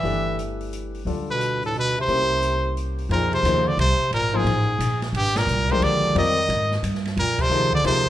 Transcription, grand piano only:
0, 0, Header, 1, 2, 480
1, 0, Start_track
1, 0, Tempo, 339559
1, 51, Time_signature, 3, 2, 24, 8
1, 11436, End_track
2, 0, Start_track
2, 0, Title_t, "Grand piano"
2, 0, Program_c, 0, 0
2, 54, Note_on_c, 0, 52, 54
2, 54, Note_on_c, 0, 57, 51
2, 59, Note_on_c, 0, 62, 50
2, 59, Note_on_c, 0, 71, 63
2, 67, Note_on_c, 0, 67, 54
2, 1392, Note_off_c, 0, 52, 0
2, 1392, Note_off_c, 0, 57, 0
2, 1395, Note_off_c, 0, 62, 0
2, 1395, Note_off_c, 0, 71, 0
2, 1399, Note_off_c, 0, 67, 0
2, 1506, Note_on_c, 0, 55, 52
2, 1507, Note_on_c, 0, 50, 56
2, 1507, Note_on_c, 0, 62, 55
2, 1511, Note_on_c, 0, 69, 64
2, 1512, Note_on_c, 0, 65, 52
2, 2840, Note_off_c, 0, 55, 0
2, 2841, Note_off_c, 0, 50, 0
2, 2841, Note_off_c, 0, 62, 0
2, 2843, Note_off_c, 0, 65, 0
2, 2843, Note_off_c, 0, 69, 0
2, 2944, Note_on_c, 0, 58, 52
2, 2946, Note_on_c, 0, 61, 50
2, 2950, Note_on_c, 0, 64, 49
2, 2954, Note_on_c, 0, 72, 59
2, 2956, Note_on_c, 0, 67, 50
2, 4280, Note_off_c, 0, 58, 0
2, 4281, Note_off_c, 0, 61, 0
2, 4282, Note_off_c, 0, 64, 0
2, 4284, Note_off_c, 0, 72, 0
2, 4285, Note_off_c, 0, 67, 0
2, 4389, Note_on_c, 0, 58, 59
2, 4392, Note_on_c, 0, 53, 59
2, 4399, Note_on_c, 0, 68, 54
2, 4401, Note_on_c, 0, 63, 54
2, 4402, Note_on_c, 0, 72, 68
2, 4849, Note_off_c, 0, 58, 0
2, 4850, Note_off_c, 0, 53, 0
2, 4854, Note_off_c, 0, 63, 0
2, 4854, Note_off_c, 0, 68, 0
2, 4855, Note_off_c, 0, 72, 0
2, 4877, Note_on_c, 0, 58, 65
2, 4884, Note_on_c, 0, 53, 73
2, 4885, Note_on_c, 0, 63, 68
2, 4888, Note_on_c, 0, 68, 60
2, 4888, Note_on_c, 0, 72, 80
2, 5145, Note_off_c, 0, 58, 0
2, 5148, Note_off_c, 0, 53, 0
2, 5149, Note_off_c, 0, 63, 0
2, 5150, Note_off_c, 0, 68, 0
2, 5150, Note_off_c, 0, 72, 0
2, 6131, Note_on_c, 0, 53, 75
2, 6132, Note_on_c, 0, 63, 66
2, 6134, Note_on_c, 0, 58, 65
2, 6136, Note_on_c, 0, 72, 86
2, 6143, Note_on_c, 0, 68, 68
2, 6286, Note_off_c, 0, 53, 0
2, 6287, Note_off_c, 0, 63, 0
2, 6288, Note_off_c, 0, 58, 0
2, 6289, Note_off_c, 0, 72, 0
2, 6292, Note_off_c, 0, 68, 0
2, 8071, Note_on_c, 0, 53, 72
2, 8077, Note_on_c, 0, 56, 64
2, 8079, Note_on_c, 0, 62, 62
2, 8079, Note_on_c, 0, 70, 77
2, 8081, Note_on_c, 0, 67, 66
2, 8676, Note_off_c, 0, 53, 0
2, 8679, Note_off_c, 0, 56, 0
2, 8680, Note_off_c, 0, 62, 0
2, 8680, Note_off_c, 0, 70, 0
2, 8681, Note_off_c, 0, 67, 0
2, 8702, Note_on_c, 0, 55, 69
2, 8703, Note_on_c, 0, 60, 63
2, 8703, Note_on_c, 0, 65, 66
2, 8706, Note_on_c, 0, 74, 80
2, 8713, Note_on_c, 0, 70, 62
2, 8974, Note_off_c, 0, 55, 0
2, 8975, Note_off_c, 0, 60, 0
2, 8975, Note_off_c, 0, 65, 0
2, 8976, Note_off_c, 0, 74, 0
2, 8980, Note_off_c, 0, 70, 0
2, 10614, Note_on_c, 0, 53, 64
2, 10621, Note_on_c, 0, 58, 59
2, 10621, Note_on_c, 0, 63, 60
2, 10624, Note_on_c, 0, 72, 70
2, 10625, Note_on_c, 0, 68, 58
2, 10888, Note_off_c, 0, 53, 0
2, 10892, Note_off_c, 0, 58, 0
2, 10892, Note_off_c, 0, 63, 0
2, 10894, Note_off_c, 0, 68, 0
2, 10894, Note_off_c, 0, 72, 0
2, 11085, Note_on_c, 0, 63, 63
2, 11086, Note_on_c, 0, 53, 72
2, 11086, Note_on_c, 0, 68, 66
2, 11089, Note_on_c, 0, 58, 64
2, 11089, Note_on_c, 0, 72, 74
2, 11363, Note_off_c, 0, 63, 0
2, 11364, Note_off_c, 0, 53, 0
2, 11364, Note_off_c, 0, 68, 0
2, 11365, Note_off_c, 0, 58, 0
2, 11365, Note_off_c, 0, 72, 0
2, 11436, End_track
0, 0, End_of_file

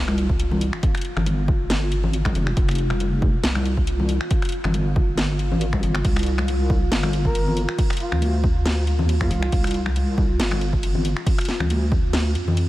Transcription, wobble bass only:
0, 0, Header, 1, 2, 480
1, 0, Start_track
1, 0, Tempo, 434783
1, 916, Time_signature, 4, 2, 24, 8
1, 14006, End_track
2, 0, Start_track
2, 0, Title_t, "Wobble bass"
2, 0, Program_c, 0, 39
2, 0, Note_on_c, 0, 36, 89
2, 790, Note_off_c, 0, 36, 0
2, 1286, Note_on_c, 0, 31, 102
2, 2248, Note_on_c, 0, 32, 89
2, 2265, Note_off_c, 0, 31, 0
2, 2583, Note_off_c, 0, 32, 0
2, 2596, Note_on_c, 0, 29, 83
2, 2819, Note_off_c, 0, 29, 0
2, 2837, Note_on_c, 0, 29, 98
2, 3783, Note_off_c, 0, 29, 0
2, 3795, Note_on_c, 0, 36, 96
2, 4629, Note_off_c, 0, 36, 0
2, 5128, Note_on_c, 0, 31, 97
2, 6087, Note_on_c, 0, 32, 91
2, 6104, Note_off_c, 0, 31, 0
2, 6423, Note_off_c, 0, 32, 0
2, 6437, Note_on_c, 0, 31, 97
2, 6659, Note_off_c, 0, 31, 0
2, 6677, Note_on_c, 0, 36, 101
2, 7622, Note_off_c, 0, 36, 0
2, 7634, Note_on_c, 0, 31, 91
2, 8468, Note_off_c, 0, 31, 0
2, 8965, Note_on_c, 0, 38, 98
2, 9924, Note_on_c, 0, 39, 85
2, 9941, Note_off_c, 0, 38, 0
2, 10261, Note_off_c, 0, 39, 0
2, 10277, Note_on_c, 0, 36, 90
2, 10499, Note_off_c, 0, 36, 0
2, 10515, Note_on_c, 0, 36, 100
2, 11462, Note_off_c, 0, 36, 0
2, 11476, Note_on_c, 0, 31, 87
2, 12309, Note_off_c, 0, 31, 0
2, 12806, Note_on_c, 0, 38, 99
2, 13637, Note_on_c, 0, 41, 88
2, 13653, Note_off_c, 0, 38, 0
2, 14006, Note_off_c, 0, 41, 0
2, 14006, End_track
0, 0, End_of_file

